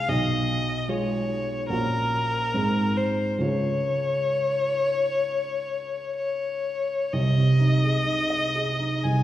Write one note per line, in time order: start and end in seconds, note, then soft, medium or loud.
0.00 0.10 C2 soft
0.00 0.10 G#3 soft
0.00 0.11 D#4 soft
0.00 0.11 G#4 soft
0.00 0.10 F5 medium
0.09 0.86 B1 soft
0.09 0.89 D#5 medium
0.88 1.65 G#3 soft
0.88 1.65 F4 soft
0.88 1.65 G#4 soft
0.88 1.68 C#5 medium
1.69 2.51 A#1 soft
1.69 2.49 A#3 soft
1.69 2.50 C#4 soft
1.69 2.50 F#4 soft
1.69 2.98 A#4 medium
2.54 3.40 G#2 soft
2.54 3.39 C4 soft
2.54 3.39 D#4 soft
2.54 3.39 G#4 soft
2.97 3.43 C5 medium
3.38 7.07 C#2 soft
3.38 7.08 C#4 soft
3.38 7.09 F4 soft
3.38 6.17 C#5 medium
3.43 7.09 G#4 soft
6.18 7.15 C#5 soft
7.13 8.99 C2 soft
7.13 9.05 D#5 medium
7.37 7.74 C3 soft
7.60 7.96 D#4 soft
7.83 8.20 G#4 soft
8.06 8.44 D#4 soft
8.30 8.70 D#5 soft
8.55 8.94 G#4 soft
8.80 9.17 D#4 soft
9.03 9.23 C2 soft
9.03 9.23 G#5 medium